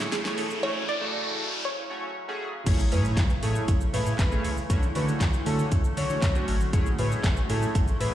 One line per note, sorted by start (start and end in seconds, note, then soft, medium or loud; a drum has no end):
0.00 2.62 C#3 medium
0.00 0.61 E3 medium
0.00 2.63 A3 medium
0.00 0.61 E4 medium
0.00 0.61 G#4 medium
0.00 snare loud
0.00 riser medium
0.00 shaker medium
0.12 0.29 A1 loud
0.12 0.38 G#4 medium
0.12 snare loud
0.12 closed hi-hat medium
0.12 shaker medium
0.25 0.45 A3 medium
0.25 0.45 E4 medium
0.25 0.45 G#4 medium
0.25 0.45 C#5 medium
0.25 snare loud
0.25 shaker soft
0.38 0.54 E1 loud
0.38 0.49 A4 medium
0.38 open hi-hat medium
0.38 shaker medium
0.50 shaker medium
0.63 2.64 F#3 medium
0.63 0.83 A3 medium
0.63 0.83 C#4 medium
0.63 0.83 F#4 medium
0.63 0.75 C#5 loud
0.63 0.84 C#5 medium
0.89 1.67 D5 loud
1.01 1.48 C#3 medium
1.01 1.48 A3 medium
1.01 1.49 F#4 medium
1.01 1.49 A4 medium
1.65 1.89 C#5 medium
1.90 2.10 A3 medium
1.90 2.10 C#4 medium
1.90 2.10 F#4 medium
1.90 2.11 C#5 medium
2.28 2.49 A3 loud
2.28 2.49 C#4 medium
2.28 2.49 F#4 medium
2.28 2.49 G#4 loud
2.66 2.93 A1 loud
2.66 4.68 C#3 medium
2.66 4.68 E3 medium
2.66 4.68 G#3 medium
2.66 2.80 A3 medium
2.66 8.14 A3 medium
2.66 2.80 C#4 medium
2.66 2.80 E4 medium
2.66 4.68 E4 loud
2.66 2.80 G#4 medium
2.66 2.80 C#5 loud
2.66 kick loud
2.66 closed hi-hat medium
2.66 crash loud
2.66 impact medium
2.66 shaker medium
2.79 shaker medium
2.91 3.19 A2 loud
2.91 3.19 A3 medium
2.91 3.19 C#4 medium
2.91 3.19 E4 medium
2.91 3.19 G#4 medium
2.91 3.01 B4 medium
2.91 3.19 C#5 medium
2.91 open hi-hat medium
2.91 shaker medium
3.05 shaker medium
3.17 3.34 A1 loud
3.17 kick loud
3.17 snare medium
3.17 clap loud
3.17 closed hi-hat medium
3.17 shaker medium
3.30 shaker medium
3.42 3.59 A2 loud
3.42 3.70 A3 medium
3.42 3.70 C#4 medium
3.42 3.70 E4 medium
3.42 3.70 G#4 medium
3.42 3.62 A4 medium
3.42 3.70 C#5 medium
3.42 open hi-hat medium
3.42 shaker medium
3.55 shaker medium
3.68 3.85 A1 loud
3.68 kick loud
3.68 closed hi-hat medium
3.68 shaker medium
3.81 shaker medium
3.93 4.02 A2 loud
3.93 4.14 A3 medium
3.93 4.14 C#4 medium
3.93 4.14 E4 medium
3.93 4.14 G#4 medium
3.93 4.13 B4 medium
3.93 4.14 C#5 medium
3.93 open hi-hat medium
3.93 shaker medium
4.06 4.15 A2 loud
4.06 shaker medium
4.19 4.36 A1 loud
4.19 4.55 B4 loud
4.19 kick loud
4.19 snare medium
4.19 clap loud
4.19 closed hi-hat medium
4.19 shaker medium
4.31 4.52 A3 medium
4.31 4.52 C#4 medium
4.31 4.52 E4 medium
4.31 4.52 G#4 medium
4.31 4.52 C#5 medium
4.31 shaker soft
4.44 4.61 C#2 medium
4.44 open hi-hat medium
4.44 shaker medium
4.57 shaker medium
4.70 4.86 D2 loud
4.70 6.71 D3 medium
4.70 6.71 F#3 medium
4.70 4.83 A3 medium
4.70 4.83 C#4 medium
4.70 6.71 C#4 medium
4.70 4.83 D4 medium
4.70 6.71 F#4 loud
4.70 4.83 F#4 medium
4.70 4.83 C#5 loud
4.70 kick loud
4.70 closed hi-hat medium
4.70 shaker medium
4.83 shaker medium
4.95 5.12 D3 loud
4.95 5.22 A3 medium
4.95 5.22 C#4 medium
4.95 5.22 D4 medium
4.95 5.22 F#4 medium
4.95 5.05 B4 medium
4.95 5.22 C#5 medium
4.95 open hi-hat medium
4.95 shaker medium
5.08 shaker medium
5.20 5.37 D2 loud
5.20 kick loud
5.20 snare medium
5.20 clap loud
5.20 closed hi-hat medium
5.20 shaker medium
5.33 shaker medium
5.46 5.63 D3 loud
5.46 5.73 A3 medium
5.46 5.73 C#4 medium
5.46 5.73 D4 medium
5.46 5.73 F#4 medium
5.46 5.65 A4 medium
5.46 5.73 C#5 medium
5.46 open hi-hat medium
5.46 shaker medium
5.59 shaker medium
5.72 5.88 D2 loud
5.72 kick loud
5.72 closed hi-hat medium
5.72 shaker medium
5.84 shaker medium
5.97 6.05 D3 loud
5.97 6.17 A3 medium
5.97 6.17 C#4 medium
5.97 6.17 D4 medium
5.97 6.17 F#4 medium
5.97 6.33 C#5 loud
5.97 6.17 C#5 medium
5.97 open hi-hat medium
5.97 shaker medium
6.10 6.18 D3 loud
6.10 shaker medium
6.22 6.39 D2 loud
6.22 kick loud
6.22 snare medium
6.22 clap loud
6.22 closed hi-hat medium
6.22 shaker medium
6.35 6.55 A3 medium
6.35 6.55 C#4 medium
6.35 6.55 D4 medium
6.35 6.56 F#4 medium
6.35 6.56 C#5 medium
6.35 shaker soft
6.48 6.64 G#1 medium
6.48 open hi-hat medium
6.48 shaker medium
6.61 shaker medium
6.73 6.90 A1 loud
6.73 8.14 C#3 medium
6.73 8.14 E3 medium
6.73 8.14 G#3 medium
6.73 6.87 A3 medium
6.73 6.87 C#4 medium
6.73 6.87 E4 medium
6.73 8.14 E4 medium
6.73 6.87 G#4 medium
6.73 6.87 C#5 loud
6.73 kick loud
6.73 closed hi-hat medium
6.73 shaker medium
6.86 shaker medium
6.99 7.15 A2 loud
6.99 7.26 A3 medium
6.99 7.26 C#4 medium
6.99 7.26 E4 medium
6.99 7.26 G#4 medium
6.99 7.08 B4 medium
6.99 7.26 C#5 medium
6.99 open hi-hat medium
6.99 shaker medium
7.12 shaker medium
7.24 7.40 A1 loud
7.24 kick loud
7.24 snare medium
7.24 clap loud
7.24 closed hi-hat medium
7.24 shaker medium
7.37 shaker medium
7.49 7.66 A2 loud
7.49 7.76 A3 medium
7.49 7.76 C#4 medium
7.49 7.77 E4 medium
7.49 7.77 G#4 medium
7.49 7.69 A4 medium
7.49 7.77 C#5 medium
7.49 open hi-hat medium
7.49 shaker medium
7.62 shaker medium
7.75 7.92 A1 loud
7.75 kick loud
7.75 closed hi-hat medium
7.75 shaker medium
7.88 shaker medium
8.00 8.09 A2 loud
8.00 8.14 A3 medium
8.00 8.14 C#4 medium
8.00 8.14 E4 medium
8.00 8.14 G#4 medium
8.00 8.14 B4 medium
8.00 8.14 E5 medium
8.00 open hi-hat medium
8.00 shaker medium